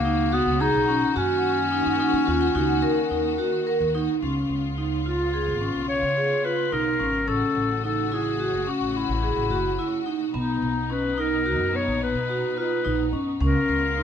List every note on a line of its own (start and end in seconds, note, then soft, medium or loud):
0.00 0.43 C#2 medium
0.00 1.14 B2 medium
0.00 1.14 C#3 medium
0.00 0.35 A#3 loud
0.00 4.19 F#4 medium
0.05 0.24 D#4 medium
0.32 0.62 B3 loud
0.32 0.52 F#4 medium
0.47 0.73 C#2 medium
0.61 1.16 D#4 loud
0.61 0.80 G#4 medium
0.75 1.01 B1 medium
0.88 1.07 C#4 medium
1.16 1.82 F#2 medium
1.16 4.19 D#3 medium
1.16 4.19 A#3 medium
1.16 3.62 C#4 loud
1.16 1.54 F#4 medium
1.71 1.84 D#4 medium
1.71 1.91 D#4 medium
1.86 1.99 F#2 medium
1.99 2.43 C#4 medium
1.99 2.18 D#4 medium
2.13 2.27 D#3 medium
2.27 2.54 D#2 medium
2.27 2.46 F4 medium
2.41 2.56 F4 medium
2.55 2.81 C#2 medium
2.55 2.93 D#4 medium
2.55 2.84 F#4 medium
2.82 3.90 A#4 medium
3.11 3.37 D#2 medium
3.11 3.30 D#4 medium
3.38 3.58 F#4 medium
3.67 3.86 A#4 medium
3.80 4.07 D#2 medium
3.95 4.14 D#4 medium
4.22 4.48 C#2 medium
4.22 10.31 C#3 medium
4.22 7.25 B3 medium
4.22 4.60 C#4 medium
4.22 7.25 F4 medium
4.49 5.49 C#2 medium
4.78 4.97 D#4 medium
5.06 5.85 F4 medium
5.06 5.25 F4 medium
5.34 5.53 G#4 medium
5.48 5.74 G#1 medium
5.61 5.99 C#4 medium
5.75 6.01 B1 medium
5.89 6.46 C#5 medium
6.03 6.29 C#3 medium
6.17 6.36 G#4 medium
6.44 6.64 F4 medium
6.44 6.74 B4 medium
6.72 6.98 B1 medium
6.72 6.91 D#4 medium
6.72 7.29 A#4 medium
7.00 7.26 G#1 medium
7.00 7.19 C#4 medium
7.27 7.41 A1 medium
7.27 10.31 A3 medium
7.27 7.66 C#4 medium
7.27 10.32 F#4 medium
7.27 7.84 A4 medium
7.55 8.49 A1 medium
7.84 8.03 D#4 medium
7.84 8.14 A4 medium
8.12 8.31 E4 medium
8.12 8.71 G#4 medium
8.40 8.59 F#4 medium
8.53 8.66 F#1 medium
8.67 9.05 C#4 medium
8.67 8.98 F#4 medium
8.81 9.07 A1 medium
8.96 10.07 E4 medium
9.09 9.35 A1 medium
9.23 9.42 G#4 medium
9.36 9.50 A1 medium
9.50 9.77 F#1 medium
9.50 9.70 F#4 medium
9.79 9.98 E4 medium
10.06 10.25 D#4 medium
10.34 10.60 B1 medium
10.34 13.39 B2 medium
10.34 10.72 B3 medium
10.34 13.39 B3 medium
10.34 10.93 D#4 medium
10.34 13.39 D#4 medium
10.62 11.60 B1 medium
10.90 11.09 C#4 medium
10.90 11.21 B4 medium
11.18 11.37 D#4 medium
11.18 11.77 A#4 medium
11.46 11.65 F#4 medium
11.60 11.86 F#2 medium
11.73 12.12 B3 medium
11.73 12.03 C#5 medium
11.88 12.14 A#1 medium
12.03 12.54 B4 medium
12.15 12.42 B2 medium
12.29 12.48 F#4 medium
12.57 12.77 F4 medium
12.57 13.10 B4 medium
12.85 13.12 A#1 medium
12.85 13.04 D#4 medium
13.13 13.40 F#2 medium
13.13 13.32 C#4 medium
13.40 13.54 C#2 loud
13.40 14.03 C#3 medium
13.40 14.03 B3 medium
13.40 13.80 C#4 medium
13.40 14.03 F4 medium
13.40 14.03 A#4 medium
13.69 14.03 C#2 medium
13.97 14.03 D#4 medium